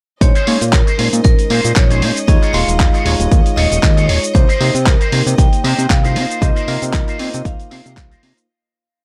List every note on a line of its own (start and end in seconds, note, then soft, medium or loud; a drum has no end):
0.21 0.31 A#1 loud
0.21 0.32 G#3 medium
0.21 0.32 C#4 medium
0.21 0.32 D#4 medium
0.21 0.33 C5 loud
0.21 0.75 C#5 medium
0.21 8.50 D#5 medium
0.21 kick loud
0.21 closed hi-hat medium
0.21 shaker medium
0.34 0.61 C#4 loud
0.34 0.61 D#4 loud
0.34 0.61 G#4 loud
0.34 0.62 C5 loud
0.34 closed hi-hat soft
0.34 shaker soft
0.47 0.57 A#2 medium
0.47 0.58 G#3 medium
0.47 0.58 C#4 medium
0.47 0.58 D#4 medium
0.47 0.59 C#5 loud
0.47 open hi-hat loud
0.61 0.75 A#2 loud
0.61 closed hi-hat soft
0.61 shaker medium
0.73 0.83 A#1 loud
0.73 1.23 A#4 medium
0.73 kick loud
0.73 clap loud
0.73 closed hi-hat medium
0.73 shaker medium
0.86 1.05 C#4 medium
0.86 1.06 D#4 medium
0.86 1.06 G#4 medium
0.86 1.06 C5 medium
0.86 closed hi-hat soft
0.86 shaker soft
0.98 1.09 A#2 medium
0.98 1.87 G#3 medium
0.98 1.87 C#4 medium
0.98 1.87 D#4 medium
0.98 1.88 C5 medium
0.98 open hi-hat medium
1.13 1.21 A#2 loud
1.13 closed hi-hat soft
1.13 shaker medium
1.24 1.35 A#1 loud
1.24 1.72 A#4 medium
1.24 muted clean electric guitar stroke soft
1.24 kick loud
1.24 closed hi-hat medium
1.24 shaker medium
1.39 closed hi-hat soft
1.39 shaker soft
1.50 1.61 A#2 loud
1.50 1.70 C#4 loud
1.50 1.71 D#4 loud
1.50 1.71 G#4 loud
1.50 1.71 C5 loud
1.50 open hi-hat loud
1.64 1.73 A#2 medium
1.64 closed hi-hat soft
1.64 shaker medium
1.76 2.03 A#1 loud
1.76 2.29 C#5 loud
1.76 kick loud
1.76 clap loud
1.76 closed hi-hat medium
1.76 shaker medium
1.90 2.25 G#3 medium
1.90 2.16 C#4 medium
1.90 2.25 C#4 medium
1.90 2.16 D#4 medium
1.90 2.25 D#4 medium
1.90 2.17 G#4 medium
1.90 2.17 C5 loud
1.90 2.26 C#5 medium
1.90 closed hi-hat soft
1.90 shaker soft
2.02 2.12 A#2 medium
2.02 open hi-hat medium
2.16 closed hi-hat soft
2.16 shaker medium
2.27 2.38 D#2 loud
2.27 2.51 G#3 medium
2.27 2.51 D#4 medium
2.27 2.51 F4 medium
2.27 2.51 C#5 loud
2.27 2.54 D#5 loud
2.27 kick loud
2.27 closed hi-hat medium
2.27 shaker medium
2.42 2.68 D#4 loud
2.42 2.68 F4 loud
2.42 2.68 G#4 loud
2.42 2.69 C#5 loud
2.42 closed hi-hat soft
2.42 shaker soft
2.53 2.64 D#1 medium
2.53 3.03 G#3 loud
2.53 3.03 D#4 medium
2.53 3.03 F4 medium
2.53 3.60 F5 loud
2.53 3.03 C6 loud
2.53 open hi-hat loud
2.68 2.81 D#1 medium
2.68 closed hi-hat soft
2.68 shaker medium
2.80 2.90 D#2 loud
2.80 kick loud
2.80 clap loud
2.80 closed hi-hat medium
2.80 shaker medium
2.93 3.12 D#4 medium
2.93 3.13 F4 medium
2.93 3.13 G#4 medium
2.93 3.13 C#5 medium
2.93 closed hi-hat soft
2.93 shaker soft
3.04 3.16 D#1 medium
3.04 4.32 G#3 medium
3.04 4.32 D#4 medium
3.04 4.32 F4 medium
3.04 4.33 C#5 loud
3.04 open hi-hat loud
3.19 3.28 D#1 loud
3.19 closed hi-hat soft
3.19 shaker medium
3.30 3.42 D#2 loud
3.30 muted clean electric guitar stroke soft
3.30 kick loud
3.30 closed hi-hat medium
3.30 shaker medium
3.46 closed hi-hat soft
3.46 shaker soft
3.56 3.67 D#1 loud
3.56 3.77 D#4 loud
3.56 3.77 F4 loud
3.56 3.78 G#4 loud
3.56 3.78 C#5 loud
3.56 4.10 D#5 loud
3.56 open hi-hat loud
3.71 3.80 D#1 medium
3.71 closed hi-hat soft
3.71 shaker medium
3.83 4.10 D#2 medium
3.83 kick loud
3.83 clap loud
3.83 closed hi-hat medium
3.83 shaker medium
3.96 4.23 D#4 medium
3.96 4.23 F4 medium
3.96 4.23 G#4 medium
3.96 4.24 C#5 loud
3.96 closed hi-hat soft
3.96 shaker soft
4.08 4.19 D#1 medium
4.08 4.35 C#5 medium
4.08 open hi-hat loud
4.23 closed hi-hat soft
4.23 shaker medium
4.34 4.45 C2 loud
4.34 4.46 A#3 medium
4.34 4.46 D#4 medium
4.34 4.46 G4 medium
4.34 4.88 C5 loud
4.34 4.46 C5 loud
4.34 kick loud
4.34 closed hi-hat medium
4.34 shaker medium
4.48 4.75 D#4 loud
4.48 4.75 G4 loud
4.48 4.75 A#4 loud
4.48 4.75 C5 loud
4.48 closed hi-hat soft
4.48 shaker soft
4.60 4.71 C3 medium
4.60 4.72 A#3 loud
4.60 4.72 D#4 medium
4.60 4.72 G4 medium
4.60 4.72 D#5 loud
4.60 open hi-hat loud
4.75 4.88 C3 medium
4.75 closed hi-hat soft
4.75 shaker medium
4.86 4.97 C2 medium
4.86 5.40 A#4 medium
4.86 kick loud
4.86 clap loud
4.86 closed hi-hat medium
4.86 shaker medium
5.00 5.19 D#4 medium
5.00 5.20 G4 medium
5.00 5.20 A#4 medium
5.00 5.20 C5 loud
5.00 closed hi-hat soft
5.00 shaker soft
5.12 5.23 C3 medium
5.12 6.00 A#3 medium
5.12 6.01 D#4 medium
5.12 6.01 G4 medium
5.12 6.01 C5 medium
5.12 open hi-hat loud
5.27 5.35 C3 loud
5.27 closed hi-hat soft
5.27 shaker medium
5.38 5.49 C2 loud
5.38 5.91 G5 loud
5.38 muted clean electric guitar stroke soft
5.38 kick loud
5.38 closed hi-hat medium
5.38 shaker medium
5.53 closed hi-hat soft
5.53 shaker soft
5.63 5.74 C3 loud
5.63 5.84 D#4 loud
5.63 5.84 G4 loud
5.63 5.85 A#4 loud
5.63 5.85 C5 loud
5.63 open hi-hat loud
5.79 5.87 C3 medium
5.79 closed hi-hat soft
5.79 shaker medium
5.90 6.17 C2 medium
5.90 6.43 F5 loud
5.90 kick loud
5.90 clap loud
5.90 closed hi-hat medium
5.90 shaker medium
6.03 6.39 A#3 medium
6.03 6.14 D#4 medium
6.03 6.39 D#4 medium
6.03 6.39 F4 medium
6.03 6.15 G4 medium
6.03 6.15 A#4 medium
6.03 6.40 C5 medium
6.03 6.16 C5 medium
6.03 closed hi-hat soft
6.03 shaker soft
6.15 6.26 C3 medium
6.15 6.47 D#4 medium
6.15 6.47 F4 medium
6.15 6.48 A#4 medium
6.15 6.48 C5 loud
6.15 open hi-hat loud
6.30 closed hi-hat soft
6.30 shaker medium
6.41 6.52 C2 loud
6.41 6.65 A#3 medium
6.41 6.65 D#4 medium
6.41 6.65 F4 medium
6.41 6.65 C5 loud
6.41 7.18 D#5 loud
6.41 kick loud
6.41 closed hi-hat medium
6.41 shaker medium
6.55 6.82 D#4 loud
6.55 6.82 F4 loud
6.55 6.82 A#4 loud
6.55 6.83 C5 loud
6.55 closed hi-hat soft
6.55 shaker soft
6.67 6.78 C3 medium
6.67 7.17 A#3 medium
6.67 7.17 D#4 medium
6.67 7.17 F4 medium
6.67 7.17 A#4 loud
6.67 open hi-hat loud
6.82 6.95 C3 loud
6.82 closed hi-hat soft
6.82 shaker medium
6.93 7.04 C2 loud
6.93 kick loud
6.93 clap loud
6.93 closed hi-hat medium
6.93 shaker medium
7.07 7.26 D#4 medium
7.07 7.27 F4 medium
7.07 7.27 A#4 medium
7.07 7.27 C5 loud
7.07 closed hi-hat soft
7.07 shaker soft
7.19 7.30 C3 medium
7.19 8.46 A#3 medium
7.19 8.46 D#4 medium
7.19 8.46 F4 medium
7.19 8.46 C5 loud
7.19 7.46 D#5 loud
7.19 open hi-hat loud
7.34 7.42 C3 loud
7.34 shaker medium
7.45 7.55 C2 loud
7.45 8.19 F5 loud
7.45 muted clean electric guitar stroke soft
7.45 kick loud
7.45 closed hi-hat medium
7.45 shaker medium
7.60 closed hi-hat soft
7.60 shaker soft
7.70 7.82 C3 medium
7.70 7.91 D#4 loud
7.70 7.91 F4 loud
7.70 7.91 A#4 loud
7.70 7.92 C5 loud
7.70 open hi-hat loud
7.86 7.99 C3 medium
7.86 closed hi-hat soft
7.86 shaker medium
7.97 8.16 C2 medium
7.97 kick loud
7.97 clap loud
7.97 closed hi-hat medium
7.97 shaker medium
8.11 8.37 D#4 medium
8.11 8.37 F4 medium
8.11 8.37 A#4 medium
8.11 8.38 C5 medium
8.11 closed hi-hat soft
8.11 shaker soft
8.23 8.33 C3 medium
8.23 open hi-hat loud
8.38 shaker medium